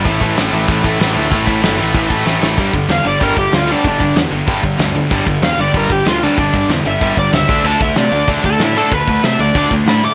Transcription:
<<
  \new Staff \with { instrumentName = "Lead electric guitar" } { \time 4/4 \key d \mixolydian \tempo 4 = 190 r1 | r1 | r4 f''8 d''8 bes'8 g'8 f'8 d'8 | d'4 r2. |
r4 f''8 d''8 bes'8 g'8 f'8 d'8 | d'4 r8 e''4 d''8 e''4 | a''8 e''8 d''4 r8 a'8 e'8 a'8 | b'4 e''8 d''8 d''8 r8 b''8 d'''8 | }
  \new Staff \with { instrumentName = "Distorted electric guitar" } { \clef bass \time 4/4 \key d \mixolydian <a, e a>8 <a, e a>8 <a, e a>8 <a, e a>8 <a, e a>8 <a, e a>8 <a, e a>8 <a, e a>8 | <a, e a>8 <a, e a>8 <a, e a>8 <a, e a>8 <a, e a>8 <a, e a>8 <a, e a>8 <a, e a>8 | <g, d g>4. <g, d g>4. <g, d g>4 | <g, d g>4. <g, d g>4. <g, d g>4 |
<g, d g>4. <g, d g>4. <g, d g>4 | <g, d g>4. <g, d g>4. <g, d g>8 <d a d'>8~ | <d a d'>4 <d a d'>4. <d a d'>4 <d a d'>8~ | <d a d'>4 <d a d'>4. <d a d'>4 r8 | }
  \new Staff \with { instrumentName = "Overdriven electric guitar" } { \clef bass \time 4/4 \key d \mixolydian <a, e a>8 <a, e a>8 <a, e a>8 <a, e a>8 <a, e a>8 <a, e a>8 <a, e a>8 <a, e a>8 | <a, e a>8 <a, e a>8 <a, e a>8 <a, e a>8 <a, e a>8 <a, e a>8 <a, e a>8 <a, e a>8 | <g, d g>8 <g, d>8 <g, d>8 <g, d>8 <g, d g>8 <g, d>8 <g, d>8 <g, d g>8 | <g, d>8 <g, d>8 <g, d>8 <g, d>8 <g, d g>8 <g, d>8 <g, d>8 <g, d>8 |
<g, d g>8 <g, d>8 <g, d>8 <g, d>8 <g, d g>8 <g, d>8 <g, d>8 <g, d g>8 | <g, d>8 <g, d>8 <g, d>8 <g, d>8 <g, d g>8 <g, d>8 <g, d>8 <d a d'>8 | <d a d'>8 <d a>8 <d a>8 <d a>8 <d a d'>8 <d a>8 <d a>8 <d a d'>8 | <d a>8 <d a>8 <d a>8 <d a>8 <d a d'>8 <d a>8 <d a>8 <d a>8 | }
  \new Staff \with { instrumentName = "Overdriven electric guitar" } { \clef bass \time 4/4 \key d \mixolydian <a, e a>8 <a, e a>8 <a, e a>8 <a, e a>8 <a, e a>8 <a, e a>8 <a, e a>8 <a, e a>8 | <a, e a>8 <a, e a>8 <a, e a>8 <a, e a>8 <a, e a>8 <a, e a>8 <a, e a>8 <a, e a>8 | <g, d g>8 <g, d>8 <g, d>8 <g, d>8 <g, d g>8 <g, d>8 <g, d>8 <g, d g>8 | <g, d>8 <g, d>8 <g, d>8 <g, d>8 <g, d g>8 <g, d>8 <g, d>8 <g, d>8 |
<g, d g>8 <g, d>8 <g, d>8 <g, d>8 <g, d g>8 <g, d>8 <g, d>8 <g, d g>8 | <g, d>8 <g, d>8 <g, d>8 <g, d>8 <g, d g>8 <g, d>8 <g, d>8 <d a d'>8 | <d a d'>8 <d a>8 <d a>8 <d a>8 <d a d'>8 <d a>8 <d a>8 <d a d'>8 | <d a>8 <d a>8 <d a>8 <d a>8 <d a d'>8 <d a>8 <d a>8 <d a>8 | }
  \new Staff \with { instrumentName = "Picked electric bass" } { \clef bass \time 4/4 \key d \mixolydian a,,8 a,,8 a,,8 a,,8 a,,8 a,,8 a,,8 d,8 | a,,8 a,,8 g,,8 a,,8 a,,8 a,,8 a,,8 a,,8 | g,,8 g,,8 e,8 g,,8 g,,8 g,,8 d,4 | g,,8 g,,8 e,8 g,,8 g,,8 g,,8 d,4 |
g,,8 g,,8 e,8 g,,8 g,,8 g,,8 d,4 | g,,8 g,,8 e,8 g,,8 g,,8 g,,8 cis,8 d,8 | d,8 d,8 c8 d,8 d,8 d,8 a,4 | d,8 d,8 c8 d,8 d,8 d,8 a,4 | }
  \new DrumStaff \with { instrumentName = "Drums" } \drummode { \time 4/4 <hho bd>8 bd8 <hho sn>4 <hho bd>8 bd8 <hho sn>4 | <hho bd>8 bd8 <hho sn>4 <hho bd>8 bd8 sn8 sn8 | <hho bd>8 <hho bd>8 <hho sn>8 hho8 <hho bd>8 <hho bd>8 <hho sn>8 hho8 | <hho bd>8 <hho bd>8 <hho sn>8 hho8 <hho bd>8 <hho bd>8 <hho sn>8 hho8 |
<hho bd>8 <hho bd>8 <hho sn>8 hho8 <hho bd>8 <hho bd>8 <hho sn>8 hho8 | <hho bd>8 <hho bd>8 <hho sn>8 hho8 <hho bd>8 <hho bd>8 <hho sn>8 <hho bd>8 | cymc8 <hho bd>8 <hho sn>8 hho8 <hho bd>8 <hho bd>8 <hho sn>8 hho8 | <hho bd>8 <hho bd>8 <hho sn>8 hho8 <hho bd>8 <hho bd>8 <hho sn>8 hho8 | }
>>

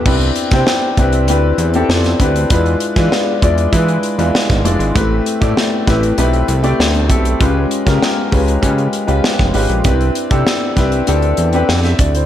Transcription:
<<
  \new Staff \with { instrumentName = "Grand piano" } { \time 4/4 \key c \major \tempo 4 = 98 << { b16 r2. r8. | r1 | r1 | r1 |
r2. <b' g''>16 <g' e''>16 d''16 <e' c''>16 | } \\ { <c' d' e' g' b'>8. <c' d' e' g' c''>8. <c' d' e' g' b'>8 <c' d' e' g' b'>8. <c' d' e' g' a'>8. <c' d' e' g' b'>8 | <gis d' e' f' b'>8. <gis d' e' f' b'>8. <gis d' e' f' d''>8 <gis d' e' f' b'>8. <gis d' e' f' b'>8. <gis d' e' f' d''>8 | <a c' e' g' b'>8. <a c' e' g' d''>8. <a c' e' g' b'>8 <a c' e' g' b'>8. <a c' e' g' d''>8. <a c' e' g' a'>8 | <aes des' f' g' ces''>8. <aes des' f' g' bes'>8. <aes des' f' g' ces''>8 <aes des' f' g' ces''>8. <aes des' f' g' ces''>8. <aes des' f' g' ces''>8 |
<c' d' e' g' b'>8. <c' d' e' g' a'>8. <c' d' e' g' b'>8 <c' d' e' g' a'>8. <c' d' e' g' b'>8. r8 | } >> }
  \new Staff \with { instrumentName = "Analog synth bass" } { \clef bass \time 4/4 \key c \major c,8 r16 c16 r8 c,8 d,8 e,8 f,8 d,8 | e,8 r16 e16 r8 e,8 e8 r16 e,16 r16 gis,,16 f,,16 gis,,16 | a,,8 r16 a,16 r8 a,,8 b,,8 c,8 d,8 b,,8 | des,8 r16 des16 r8 des,8 des8 r16 des,16 r16 f,,16 aes,,16 bes,,16 |
c,8 r16 c16 r8 c,8 d,8 e,8 f,8 d,8 | }
  \new DrumStaff \with { instrumentName = "Drums" } \drummode { \time 4/4 <cymc bd>16 hh16 hh16 <hh bd sn>16 sn8 <hh bd>16 hh16 hh8 hh16 hh16 sn16 <hh sn>16 <hh bd>16 hh16 | <hh bd>16 hh16 hh16 <hh bd sn>16 sn8 <hh bd>16 hh16 <hh bd>16 hh16 hh16 hh16 sn16 <hh bd sn>16 hh16 hh16 | <hh bd>8 hh16 <hh bd>16 sn8 <hh bd sn>16 hh16 hh16 hh16 hh16 hh16 sn16 hh16 <hh bd>16 hh16 | <hh bd>8 hh16 <hh bd sn>16 sn8 <hho bd>16 hh16 <hh bd>16 hh16 hh16 hh16 sn16 <bd sn>16 hho16 hh16 |
<hh bd>16 hh16 hh16 <hh bd>16 sn8 <hh bd sn>16 hh16 hh16 hh16 hh16 hh16 sn16 <hh sn>16 <hh bd>16 hh16 | }
>>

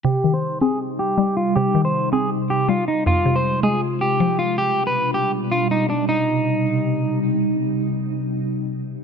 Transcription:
<<
  \new Staff \with { instrumentName = "Clean electric guitar" } { \time 4/4 \key c \minor \tempo 4 = 159 g'8. c''8. aes'8 r8 g'4 f'8 | g'8. c''8. aes'8 r8 g'8 f'8 ees'8 | f'8. c''8. aes'8 r8 g'4 f'8 | g'8. b'8. g'8 r8 f'8 ees'8 d'8 |
ees'2. r4 | r1 | }
  \new Staff \with { instrumentName = "Ambient pad" } { \clef bass \time 4/4 \key c \minor << { <g ees'>1~ | <g ees'>1 | <aes f'>1 | <g d'>1 |
<c g ees'>1~ | <c g ees'>1 | } \\ { c1~ | c1~ | c1 | b,1 |
r1 | r1 | } >> }
  \new Staff \with { instrumentName = "Synth pluck" } { \clef bass \time 4/4 \key c \minor c8 ees4 c'4. g4 | c8 ees4 c'4. g4 | f,8 c4 aes4. f4 | r1 |
r1 | r1 | }
>>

